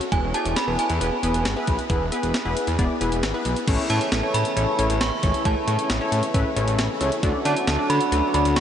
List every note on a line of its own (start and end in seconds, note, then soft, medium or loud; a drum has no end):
0.01 closed hi-hat soft
0.12 0.22 E1 loud
0.12 0.27 B3 medium
0.12 0.27 E4 medium
0.12 0.27 G#4 medium
0.12 0.27 B4 medium
0.12 0.35 G#5 medium
0.12 kick loud
0.12 closed hi-hat medium
0.23 0.33 E1 medium
0.34 0.57 B3 medium
0.34 0.57 E4 medium
0.34 0.57 G#4 medium
0.34 0.57 D5 medium
0.34 0.55 A5 medium
0.34 closed hi-hat medium
0.45 0.55 E1 medium
0.45 closed hi-hat medium
0.56 0.79 B5 loud
0.56 snare loud
0.56 closed hi-hat medium
0.68 0.77 E1 medium
0.68 0.90 B3 medium
0.68 0.90 E4 medium
0.68 0.90 G#4 medium
0.68 0.90 B4 medium
0.79 3.19 G#5 medium
0.79 closed hi-hat medium
0.90 1.00 E2 loud
0.90 closed hi-hat soft
1.01 1.11 E1 loud
1.01 1.16 B3 medium
1.01 1.16 E4 medium
1.01 1.16 G#4 medium
1.01 1.16 B4 medium
1.01 closed hi-hat medium
1.23 1.33 E1 medium
1.23 1.46 B3 medium
1.23 1.46 E4 medium
1.23 1.46 G#4 medium
1.23 1.46 B4 medium
1.23 closed hi-hat medium
1.34 1.44 E1 loud
1.34 closed hi-hat medium
1.45 1.55 G#1 medium
1.45 snare loud
1.45 closed hi-hat medium
1.56 1.79 B3 medium
1.56 1.79 E4 medium
1.56 1.79 G#4 medium
1.56 1.79 B4 medium
1.67 1.78 B1 medium
1.67 kick medium
1.67 closed hi-hat medium
1.79 closed hi-hat soft
1.90 2.00 E1 loud
1.90 2.05 B3 medium
1.90 2.05 E4 medium
1.90 2.05 G#4 medium
1.90 2.05 B4 loud
1.90 kick loud
1.90 closed hi-hat medium
2.01 2.11 E1 medium
2.12 2.35 B3 medium
2.12 2.35 E4 medium
2.12 2.35 G#4 medium
2.12 2.35 B4 loud
2.12 closed hi-hat medium
2.23 2.33 E1 medium
2.23 closed hi-hat medium
2.34 snare loud
2.34 closed hi-hat medium
2.45 2.55 E1 loud
2.45 2.68 B3 medium
2.45 2.68 E4 medium
2.45 2.68 G#4 medium
2.45 2.68 B4 loud
2.57 closed hi-hat medium
2.67 2.77 E2 loud
2.67 closed hi-hat soft
2.79 2.89 E1 loud
2.79 2.94 B3 medium
2.79 2.94 E4 medium
2.79 2.94 G#4 medium
2.79 2.94 D5 loud
2.79 kick medium
2.79 closed hi-hat medium
3.01 3.11 E1 loud
3.01 3.24 B3 medium
3.01 3.24 E4 medium
3.01 3.24 G#4 medium
3.01 3.24 B4 medium
3.01 closed hi-hat medium
3.12 3.22 E1 loud
3.12 closed hi-hat medium
3.23 3.33 G#1 medium
3.23 snare loud
3.23 closed hi-hat medium
3.34 3.57 B3 medium
3.34 3.57 E4 medium
3.34 3.57 G#4 medium
3.34 3.57 B4 loud
3.45 3.55 B1 medium
3.45 closed hi-hat medium
3.56 closed hi-hat soft
3.68 3.77 A1 loud
3.68 7.20 C#3 medium
3.68 7.20 E3 medium
3.68 8.60 A3 medium
3.68 3.83 C#4 medium
3.68 3.83 E4 medium
3.68 7.20 E4 medium
3.68 3.83 A4 medium
3.68 3.83 C#5 loud
3.68 kick loud
3.68 closed hi-hat medium
3.68 crash medium
3.90 4.00 A2 loud
3.90 4.12 C#4 medium
3.90 4.12 E4 medium
3.90 4.12 A4 medium
3.90 4.12 C#5 medium
3.90 4.31 A5 medium
3.90 closed hi-hat medium
4.01 closed hi-hat medium
4.12 4.22 A1 loud
4.12 snare loud
4.12 closed hi-hat medium
4.23 4.46 C#4 medium
4.23 4.46 E4 medium
4.23 4.46 A4 medium
4.23 4.46 C#5 medium
4.34 4.44 A2 loud
4.34 5.03 B5 medium
4.34 closed hi-hat medium
4.45 closed hi-hat medium
4.56 4.66 A1 loud
4.56 4.72 C#4 medium
4.56 4.72 E4 medium
4.56 4.72 A4 medium
4.56 4.72 C#5 medium
4.56 closed hi-hat medium
4.79 4.89 A1 medium
4.79 5.09 C#4 medium
4.79 5.09 E4 medium
4.79 5.09 A4 medium
4.79 5.09 C#5 medium
4.79 closed hi-hat medium
4.90 5.00 A1 loud
4.90 closed hi-hat medium
5.01 5.11 A1 loud
5.01 5.47 C#6 loud
5.01 snare loud
5.01 closed hi-hat medium
5.23 5.33 G#1 medium
5.23 5.38 C#4 medium
5.23 5.38 E4 medium
5.23 5.38 A4 medium
5.23 5.38 C#5 medium
5.23 kick loud
5.23 closed hi-hat medium
5.34 closed hi-hat soft
5.45 5.55 A1 loud
5.45 5.60 C#4 medium
5.45 5.60 E4 medium
5.45 5.60 A4 medium
5.45 5.60 C#5 medium
5.45 6.30 A5 medium
5.45 kick loud
5.45 closed hi-hat medium
5.68 5.77 A2 medium
5.68 5.90 C#4 medium
5.68 5.90 E4 medium
5.68 5.90 A4 medium
5.68 5.90 C#5 medium
5.68 closed hi-hat medium
5.79 closed hi-hat medium
5.90 6.00 A1 loud
5.90 snare loud
5.90 closed hi-hat medium
6.01 6.24 C#4 medium
6.01 6.24 E4 medium
6.01 6.24 A4 medium
6.01 6.24 C#5 loud
6.12 6.22 A2 loud
6.12 closed hi-hat medium
6.23 closed hi-hat medium
6.34 6.44 A1 loud
6.34 6.49 C#4 medium
6.34 6.49 E4 medium
6.34 6.49 A4 medium
6.34 6.49 B4 loud
6.34 kick loud
6.34 closed hi-hat medium
6.56 6.66 A1 loud
6.56 6.87 C#4 medium
6.56 6.87 E4 medium
6.56 6.87 A4 medium
6.56 6.87 C#5 loud
6.56 closed hi-hat medium
6.68 6.77 A1 loud
6.68 closed hi-hat medium
6.79 6.89 A1 loud
6.79 snare loud
6.79 closed hi-hat medium
7.01 7.11 C#2 medium
7.01 7.16 C#4 medium
7.01 7.16 E4 medium
7.01 7.16 A4 medium
7.01 7.16 C#5 loud
7.01 closed hi-hat medium
7.12 closed hi-hat soft
7.23 7.33 D2 loud
7.23 8.60 D3 medium
7.23 8.60 F#3 medium
7.23 7.38 D4 medium
7.23 8.60 F#4 medium
7.23 7.38 F#4 medium
7.23 7.38 A4 medium
7.23 7.38 D5 loud
7.23 kick loud
7.23 closed hi-hat medium
7.45 7.55 D3 medium
7.45 7.68 D4 medium
7.45 7.68 F#4 medium
7.45 7.68 A4 medium
7.45 7.68 D5 medium
7.45 7.91 A5 medium
7.45 closed hi-hat medium
7.57 closed hi-hat medium
7.67 7.77 D2 loud
7.67 snare loud
7.67 closed hi-hat medium
7.79 8.01 D4 medium
7.79 8.01 F#4 medium
7.79 8.01 A4 medium
7.79 8.01 D5 medium
7.90 8.00 D3 loud
7.90 8.31 B5 loud
7.90 closed hi-hat medium
8.01 closed hi-hat medium
8.12 8.22 D2 loud
8.12 8.27 D4 medium
8.12 8.27 F#4 medium
8.12 8.27 A4 medium
8.12 8.27 B4 medium
8.12 closed hi-hat medium
8.34 8.44 D2 loud
8.34 8.60 D4 medium
8.34 8.60 F#4 medium
8.34 8.60 A4 medium
8.34 8.60 D5 medium
8.34 8.57 B5 medium
8.34 closed hi-hat medium
8.45 8.55 D2 loud
8.45 closed hi-hat medium
8.56 8.60 D2 loud
8.56 8.60 C#6 loud
8.56 snare loud
8.56 closed hi-hat medium